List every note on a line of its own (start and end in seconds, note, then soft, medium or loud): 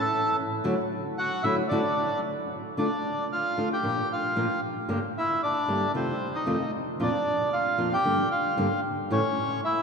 0.00 0.36 A4 medium
0.00 0.35 A5 medium
0.64 0.73 D3 medium
0.64 0.73 F#3 medium
0.64 0.74 A3 medium
0.64 0.74 E4 medium
0.64 0.74 F#4 medium
1.18 1.43 F#4 medium
1.18 1.45 F#5 loud
1.43 1.61 D3 medium
1.43 1.61 F#3 medium
1.43 1.61 A3 medium
1.43 1.61 E4 medium
1.43 1.57 E4 medium
1.43 1.61 F#4 medium
1.43 1.55 E5 medium
1.69 1.80 D3 medium
1.69 1.80 F#3 medium
1.69 1.80 A3 medium
1.69 2.20 D4 medium
1.69 1.80 E4 medium
1.69 1.80 F#4 loud
1.69 2.19 D5 medium
2.77 2.86 D3 medium
2.77 2.87 A3 medium
2.77 2.87 D4 medium
2.77 3.28 D4 medium
2.77 2.87 F4 medium
2.77 3.27 D5 medium
3.32 3.69 F4 medium
3.32 3.68 F5 medium
3.57 3.74 D3 medium
3.57 3.74 A3 medium
3.57 3.74 D4 medium
3.57 3.74 F4 medium
3.73 4.09 G4 medium
3.73 4.12 G5 medium
3.83 4.00 A#2 medium
3.83 4.01 F3 medium
3.83 4.01 A#3 medium
3.83 4.01 D4 medium
3.83 4.01 F4 medium
4.12 4.61 F4 medium
4.12 4.60 F5 medium
4.36 4.45 A#2 medium
4.36 4.45 F3 medium
4.36 4.45 A#3 medium
4.36 4.45 D4 medium
4.36 4.46 F4 medium
4.89 4.98 G2 medium
4.89 4.98 D3 medium
4.89 4.98 G3 medium
4.89 4.98 A#3 medium
4.89 4.98 D4 medium
4.89 4.98 G4 medium
5.18 5.42 E4 medium
5.18 5.41 E5 medium
5.43 5.92 D4 medium
5.43 5.91 D5 medium
5.68 5.85 G2 medium
5.68 5.85 D3 medium
5.68 5.85 G3 medium
5.68 5.85 A#3 medium
5.68 5.85 D4 medium
5.68 5.85 G4 medium
5.94 6.11 F2 medium
5.94 6.11 C3 medium
5.94 6.11 D#3 medium
5.94 6.12 A3 medium
5.94 6.11 C4 medium
5.94 6.32 C4 medium
5.94 6.12 F4 medium
5.94 6.36 C5 medium
6.35 6.71 D#4 medium
6.35 6.71 D#5 medium
6.46 6.55 F2 medium
6.46 6.56 C3 medium
6.46 6.56 D#3 medium
6.46 6.56 A3 medium
6.46 6.56 C4 medium
6.46 6.56 F4 medium
7.00 7.08 F2 medium
7.00 7.09 A#2 medium
7.00 7.09 F3 medium
7.00 7.09 A#3 medium
7.00 7.09 D4 medium
7.00 7.50 D4 medium
7.00 7.09 F4 medium
7.00 7.55 D5 medium
7.53 7.89 F4 medium
7.53 7.93 F5 medium
7.78 7.95 F2 medium
7.78 7.95 A#2 medium
7.78 7.95 F3 medium
7.78 7.95 A#3 medium
7.78 7.95 D4 medium
7.78 7.95 F4 medium
7.93 8.29 G4 medium
7.93 8.29 G5 loud
8.04 8.21 G2 medium
8.04 8.21 D3 medium
8.04 8.21 G3 medium
8.04 8.21 A#3 medium
8.04 8.22 D4 medium
8.04 8.22 G4 medium
8.31 8.81 F4 medium
8.31 8.80 F5 medium
8.57 8.66 G2 medium
8.57 8.66 D3 medium
8.57 8.67 G3 medium
8.57 8.66 A#3 medium
8.57 8.67 D4 medium
8.57 8.67 G4 medium
9.11 9.19 A2 medium
9.11 9.20 E3 medium
9.11 9.20 A3 medium
9.11 9.20 C#4 medium
9.11 9.60 C#4 medium
9.11 9.20 E4 medium
9.11 9.61 C#5 medium
9.64 9.82 E4 medium
9.64 9.82 E5 loud